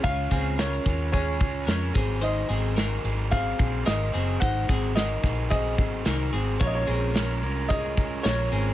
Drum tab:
HH |xxxxxxxx|xxxxxxxx|xxxxxxxo|xxxxxxxx|
SD |--o---o-|--o---o-|--oo--o-|--o---o-|
BD |oo-ooo-o|----oo--|oo-ooo--|o---oo--|